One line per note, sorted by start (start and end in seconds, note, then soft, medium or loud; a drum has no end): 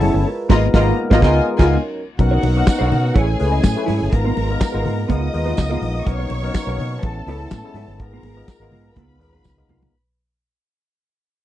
0.00 0.11 F#1 loud
0.00 0.28 G#3 medium
0.00 1.21 G#3 medium
0.00 0.25 A3 medium
0.00 0.28 B3 medium
0.00 0.25 C#4 medium
0.00 0.28 C#4 medium
0.00 0.23 E4 medium
0.00 0.28 E4 medium
0.00 0.15 E4 medium
0.00 0.14 G#4 medium
0.00 0.28 A4 loud
0.00 0.24 C#5 medium
0.00 0.13 C#5 medium
0.00 0.23 A5 loud
0.00 open hi-hat medium
0.00 high conga medium
0.14 0.23 G1 medium
0.14 muted clean electric guitar stroke soft
0.25 1.21 F4 medium
0.25 1.20 A#4 medium
0.25 1.21 B4 medium
0.49 0.67 G#1 loud
0.49 0.66 G#3 loud
0.49 0.66 A#3 medium
0.49 0.66 B3 medium
0.49 0.66 D#4 medium
0.49 0.67 F4 loud
0.49 0.67 F4 medium
0.49 0.67 F4 loud
0.49 0.67 A#4 loud
0.49 0.67 D#5 loud
0.49 0.67 A#5 medium
0.49 kick loud
0.49 snare loud
0.49 crash loud
0.55 0.69 B3 medium
0.74 0.90 G#1 loud
0.74 0.91 G#3 loud
0.74 0.91 A#3 loud
0.74 0.92 B3 loud
0.74 0.91 D#4 loud
0.74 0.91 F4 medium
0.74 0.91 F4 loud
0.74 0.90 A#4 medium
0.74 0.91 A#4 loud
0.74 0.91 D#5 loud
0.74 0.91 A#5 loud
0.74 kick loud
0.74 snare loud
0.80 0.94 B3 loud
1.10 1.21 G#1 loud
1.10 1.21 G#3 loud
1.10 1.21 A#3 loud
1.10 1.21 B3 loud
1.10 1.21 D#4 loud
1.10 1.21 F4 loud
1.10 1.22 F4 loud
1.10 1.20 A#4 loud
1.10 1.22 A#4 loud
1.10 1.21 D#5 loud
1.10 1.21 A#5 loud
1.10 kick loud
1.10 snare loud
1.18 1.22 B3 loud
1.18 2.02 D#4 medium
1.18 1.38 A#4 loud
1.18 1.70 A#4 medium
1.22 1.39 C#2 loud
1.22 1.70 C#3 medium
1.22 1.39 G#3 medium
1.22 1.70 B3 medium
1.22 1.39 B3 loud
1.22 1.40 B3 medium
1.22 1.40 D#4 medium
1.22 1.39 F4 loud
1.22 1.70 F4 medium
1.22 1.39 F4 loud
1.22 1.40 F4 loud
1.22 1.40 A#4 medium
1.22 1.39 D#5 loud
1.22 1.39 G#5 loud
1.22 kick loud
1.22 snare loud
1.58 1.76 C#2 loud
1.58 1.76 G#3 loud
1.58 1.75 B3 loud
1.58 1.76 B3 medium
1.58 1.76 D#4 loud
1.58 1.75 F4 loud
1.58 1.76 F4 medium
1.58 1.76 A#4 loud
1.58 1.77 A#4 medium
1.58 1.75 D#5 medium
1.58 1.75 G#5 loud
1.58 kick loud
1.58 snare loud
1.58 crash medium
1.71 2.05 F#3 medium
1.71 2.05 C#4 medium
1.71 2.05 A#4 medium
2.19 2.37 B1 loud
2.19 3.15 A#3 medium
2.19 2.43 B3 medium
2.19 3.15 B3 medium
2.19 2.44 C#4 medium
2.19 3.15 D#4 medium
2.19 2.44 D#4 medium
2.19 3.14 F#4 loud
2.19 2.44 F#4 medium
2.19 2.44 A#4 medium
2.19 3.14 F#5 loud
2.19 muted clean electric guitar stroke soft
2.19 kick loud
2.19 closed hi-hat medium
2.19 muted conga soft
2.31 2.41 D#4 medium
2.31 2.42 A#4 medium
2.31 2.43 C#5 medium
2.42 2.61 B1 medium
2.42 2.57 D#4 medium
2.42 2.56 A#4 medium
2.42 2.54 C#5 medium
2.42 open hi-hat medium
2.42 muted conga medium
2.56 2.72 B3 medium
2.56 2.72 C#4 medium
2.56 2.72 D#4 medium
2.56 2.72 F#4 medium
2.56 2.73 A#4 medium
2.56 muted clean electric guitar stroke medium
2.67 muted clean electric guitar stroke soft
2.67 kick loud
2.67 snare loud
2.67 clap medium
2.67 closed hi-hat medium
2.67 tambourine medium
2.67 high conga medium
2.79 2.89 B1 loud
2.79 3.05 B3 medium
2.79 3.05 C#4 medium
2.79 2.89 D#4 medium
2.79 3.05 D#4 medium
2.79 3.05 F#4 medium
2.79 2.90 A#4 medium
2.79 3.05 A#4 medium
2.79 2.90 C#5 medium
2.90 3.10 B2 loud
2.90 3.05 D#4 medium
2.90 3.03 A#4 medium
2.90 3.02 C#5 medium
2.90 open hi-hat medium
2.90 low conga medium
3.03 muted clean electric guitar stroke medium
3.14 3.34 A1 loud
3.14 5.07 G#3 medium
3.14 3.32 A3 medium
3.14 4.11 A3 medium
3.14 3.32 C#4 medium
3.14 4.11 C#4 medium
3.14 3.33 E4 loud
3.14 3.32 E4 medium
3.14 3.29 G#4 loud
3.14 3.33 G#4 medium
3.14 4.11 G#4 medium
3.14 3.33 B4 medium
3.14 3.27 C#5 loud
3.14 4.11 G#5 loud
3.14 kick loud
3.14 closed hi-hat medium
3.14 muted conga medium
3.28 muted clean electric guitar stroke soft
3.39 3.59 C#2 medium
3.39 3.64 A3 medium
3.39 3.64 C#4 medium
3.39 3.64 E4 medium
3.39 3.64 G#4 medium
3.39 3.64 B4 medium
3.39 muted clean electric guitar stroke medium
3.39 open hi-hat medium
3.52 3.62 E4 medium
3.52 3.62 G#4 medium
3.52 3.64 D#5 medium
3.63 3.74 A2 medium
3.63 kick loud
3.63 snare loud
3.63 clap medium
3.63 closed hi-hat medium
3.63 tambourine medium
3.63 high conga medium
3.76 4.01 A3 medium
3.76 4.01 C#4 medium
3.76 4.01 E4 medium
3.76 4.02 G#4 medium
3.76 4.02 B4 medium
3.76 muted clean electric guitar stroke soft
3.86 3.98 G#2 medium
3.86 4.05 E4 loud
3.86 3.99 G#4 loud
3.86 3.99 C#5 loud
3.86 open hi-hat medium
3.86 high conga medium
4.00 4.10 G1 loud
4.00 muted clean electric guitar stroke soft
4.12 4.31 G#1 loud
4.12 4.37 G#3 medium
4.12 4.37 B3 medium
4.12 5.08 B3 medium
4.12 4.37 D#4 medium
4.12 5.08 F4 medium
4.12 4.37 F4 medium
4.12 5.07 A#4 medium
4.12 6.04 A#4 medium
4.12 4.37 A#4 medium
4.12 5.07 A#5 loud
4.12 muted clean electric guitar stroke soft
4.12 kick loud
4.12 closed hi-hat medium
4.24 4.34 B3 medium
4.24 4.35 F4 medium
4.24 4.36 A#4 medium
4.35 4.55 G#1 medium
4.35 4.50 B3 medium
4.35 4.49 F4 medium
4.35 4.48 A#4 medium
4.35 open hi-hat medium
4.35 muted conga medium
4.49 4.65 G#3 medium
4.49 4.66 B3 medium
4.49 4.66 D#4 medium
4.49 4.66 F4 medium
4.49 4.66 A#4 medium
4.49 muted clean electric guitar stroke soft
4.60 muted clean electric guitar stroke soft
4.60 kick loud
4.60 snare loud
4.60 clap loud
4.60 closed hi-hat medium
4.60 tambourine medium
4.60 high conga medium
4.72 4.83 G#1 loud
4.72 4.98 G#3 medium
4.72 4.98 B3 medium
4.72 4.83 B3 medium
4.72 4.98 D#4 medium
4.72 4.84 F4 medium
4.72 4.98 F4 medium
4.72 4.85 A#4 medium
4.72 4.99 A#4 medium
4.84 5.04 G#2 medium
4.84 4.99 B3 medium
4.84 4.98 F4 medium
4.84 4.97 A#4 medium
4.84 open hi-hat medium
4.84 low conga medium
4.98 muted clean electric guitar stroke soft
5.08 5.28 C#2 loud
5.08 6.06 C#3 medium
5.08 5.26 G#3 medium
5.08 5.27 B3 loud
5.08 5.26 B3 medium
5.08 7.02 B3 medium
5.08 5.27 D#4 medium
5.08 7.02 D#4 medium
5.08 5.21 F4 medium
5.08 6.06 F4 medium
5.08 5.27 F4 medium
5.08 5.20 A#4 loud
5.08 5.27 A#4 medium
5.08 6.04 D#5 medium
5.08 6.04 D#6 medium
5.08 kick loud
5.08 closed hi-hat medium
5.08 muted conga medium
5.21 muted clean electric guitar stroke medium
5.33 5.52 D#2 medium
5.33 5.58 G#3 medium
5.33 5.58 B3 medium
5.33 5.58 D#4 medium
5.33 5.58 F4 medium
5.33 5.59 A#4 medium
5.33 muted clean electric guitar stroke soft
5.33 open hi-hat medium
5.45 5.55 B3 medium
5.45 5.56 F4 medium
5.45 5.57 B4 medium
5.56 5.76 C#2 medium
5.56 muted clean electric guitar stroke soft
5.56 kick loud
5.56 snare loud
5.56 clap medium
5.56 closed hi-hat medium
5.56 tambourine medium
5.56 high conga medium
5.70 5.95 G#3 medium
5.70 5.95 B3 medium
5.70 5.80 B3 medium
5.70 5.95 D#4 medium
5.70 5.81 F4 medium
5.70 5.95 F4 medium
5.70 5.81 A#4 medium
5.70 5.95 A#4 medium
5.81 6.00 A#1 medium
5.81 muted clean electric guitar stroke soft
5.81 open hi-hat medium
5.81 high conga medium
5.94 muted clean electric guitar stroke soft
6.05 6.25 B1 loud
6.05 6.30 F#3 medium
6.05 7.02 A#3 medium
6.05 6.30 B3 medium
6.05 6.31 C#4 medium
6.05 6.31 D#4 medium
6.05 6.31 A#4 medium
6.05 7.01 C#5 loud
6.05 7.01 C#6 loud
6.05 muted clean electric guitar stroke soft
6.05 kick loud
6.05 closed hi-hat medium
6.05 muted conga soft
6.19 6.29 D#4 medium
6.19 6.29 A#4 medium
6.19 6.30 C#5 medium
6.30 6.48 B1 medium
6.30 6.44 D#4 medium
6.30 6.44 A#4 medium
6.30 6.43 C#5 medium
6.30 open hi-hat medium
6.30 muted conga soft
6.42 6.58 F#3 medium
6.42 6.59 B3 medium
6.42 6.59 C#4 medium
6.42 6.59 D#4 medium
6.42 6.59 A#4 medium
6.42 muted clean electric guitar stroke soft
6.54 muted clean electric guitar stroke soft
6.54 kick loud
6.54 snare loud
6.54 clap medium
6.54 closed hi-hat medium
6.54 tambourine medium
6.54 high conga medium
6.67 6.76 B1 loud
6.67 6.92 F#3 loud
6.67 6.92 B3 medium
6.67 6.92 C#4 medium
6.67 6.92 D#4 medium
6.67 6.78 D#4 medium
6.67 6.92 A#4 loud
6.67 6.80 A#4 medium
6.67 6.80 C#5 medium
6.78 6.97 B2 loud
6.78 6.94 D#4 medium
6.78 6.93 A#4 medium
6.78 6.92 C#5 medium
6.78 open hi-hat medium
6.78 low conga medium
6.93 muted clean electric guitar stroke medium
7.02 7.21 A1 loud
7.02 7.99 E3 medium
7.02 7.20 G#3 medium
7.02 7.99 A3 medium
7.02 7.20 B3 medium
7.02 7.20 C#4 medium
7.02 7.99 C#4 medium
7.02 7.20 E4 medium
7.02 7.98 A4 medium
7.02 7.20 A4 medium
7.02 7.98 A5 medium
7.02 kick loud
7.02 closed hi-hat medium
7.02 muted conga medium
7.17 muted clean electric guitar stroke soft
7.27 7.45 C#2 medium
7.27 7.52 G#3 medium
7.27 7.52 B3 medium
7.27 7.52 C#4 medium
7.27 7.46 E4 medium
7.27 7.52 E4 medium
7.27 7.41 G#4 medium
7.27 7.52 A4 medium
7.27 7.40 C#5 loud
7.27 open hi-hat medium
7.41 muted clean electric guitar stroke soft
7.51 7.61 A2 loud
7.51 muted clean electric guitar stroke soft
7.51 kick loud
7.51 snare loud
7.51 clap medium
7.51 closed hi-hat medium
7.51 tambourine medium
7.51 high conga medium
7.64 7.88 G#3 medium
7.64 7.89 B3 medium
7.64 7.89 C#4 medium
7.64 7.89 E4 medium
7.64 7.89 A4 medium
7.64 muted clean electric guitar stroke soft
7.74 7.84 G#2 loud
7.74 7.93 E4 medium
7.74 7.89 G#4 loud
7.74 7.88 C#5 loud
7.74 open hi-hat medium
7.74 high conga medium
7.88 8.00 G1 loud
7.88 muted clean electric guitar stroke soft
7.99 8.18 G#1 loud
7.99 8.96 G#3 medium
7.99 8.24 G#3 medium
7.99 8.96 B3 medium
7.99 8.25 B3 medium
7.99 8.25 D#4 medium
7.99 9.91 F4 medium
7.99 8.25 F4 medium
7.99 9.92 G#4 medium
7.99 8.94 A#4 medium
7.99 8.25 A#4 medium
7.99 8.94 A#5 loud
7.99 muted clean electric guitar stroke soft
7.99 kick loud
7.99 closed hi-hat medium
8.12 8.22 B3 medium
8.12 8.23 F4 medium
8.12 8.24 A#4 medium
8.23 8.41 G#1 loud
8.23 8.38 B3 medium
8.23 8.36 F4 medium
8.23 8.35 A#4 medium
8.23 open hi-hat medium
8.23 muted conga soft
8.36 8.52 G#3 medium
8.36 8.52 B3 medium
8.36 8.53 D#4 medium
8.36 8.53 F4 medium
8.36 8.53 A#4 medium
8.36 muted clean electric guitar stroke medium
8.48 muted clean electric guitar stroke soft
8.48 kick loud
8.48 snare loud
8.48 clap loud
8.48 closed hi-hat medium
8.48 tambourine medium
8.48 high conga medium
8.60 8.69 G#1 loud
8.60 8.85 G#3 medium
8.60 8.86 B3 medium
8.60 8.71 B3 medium
8.60 8.86 D#4 medium
8.60 8.72 F4 medium
8.60 8.86 F4 medium
8.60 8.73 A#4 medium
8.60 8.86 A#4 loud
8.71 8.89 G#2 loud
8.71 8.87 B3 medium
8.71 8.85 F4 medium
8.71 8.84 A#4 medium
8.71 open hi-hat medium
8.71 low conga medium
8.85 muted clean electric guitar stroke soft
8.96 9.19 C#2 loud
8.96 9.92 C#3 medium
8.96 9.13 G#3 medium
8.96 9.16 B3 medium
8.96 9.92 B3 medium
8.96 9.14 B3 medium
8.96 9.92 D#4 medium
8.96 9.14 D#4 medium
8.96 9.09 F4 medium
8.96 9.14 F4 medium
8.96 9.08 A#4 loud
8.96 9.14 A#4 medium
8.96 9.92 B4 medium
8.96 9.91 B5 loud
8.96 kick loud
8.96 closed hi-hat medium
8.96 muted conga medium
9.09 muted clean electric guitar stroke soft
9.19 9.38 D#2 medium
9.19 9.45 G#3 medium
9.19 9.45 B3 medium
9.19 9.46 D#4 medium
9.19 9.45 F4 medium
9.19 9.46 A#4 medium
9.19 open hi-hat medium
9.33 9.44 B3 medium
9.33 9.44 F4 medium
9.33 9.46 B4 medium
9.44 9.63 C#2 loud
9.44 muted clean electric guitar stroke soft
9.44 kick loud
9.44 snare medium
9.44 tambourine medium
9.44 high conga medium
9.57 9.82 G#3 medium
9.57 9.82 B3 medium
9.57 9.82 D#4 medium
9.57 9.82 F4 medium
9.57 9.83 A#4 medium
9.57 muted clean electric guitar stroke soft
9.57 high tom medium
9.69 9.87 C2 loud
9.69 9.87 B3 medium
9.69 9.82 F4 loud
9.69 9.81 A#4 loud
9.69 mid tom medium
9.69 high conga medium
9.82 muted clean electric guitar stroke soft
9.82 floor tom loud
9.82 high conga medium